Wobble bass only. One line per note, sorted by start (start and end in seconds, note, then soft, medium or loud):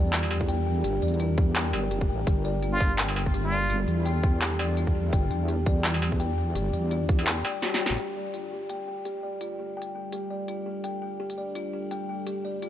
0.00 0.83 E2 loud
0.84 1.01 G1 loud
1.02 1.75 E2 loud
1.73 1.93 G1 loud
1.91 2.11 F1 loud
2.09 2.26 A1 medium
2.27 3.69 G1 loud
3.70 3.86 G1 loud
3.88 5.12 E2 loud
5.13 5.29 G1 loud
5.31 6.55 E2 loud
6.55 6.72 G1 loud
6.73 7.44 E2 loud
7.90 7.98 A1 loud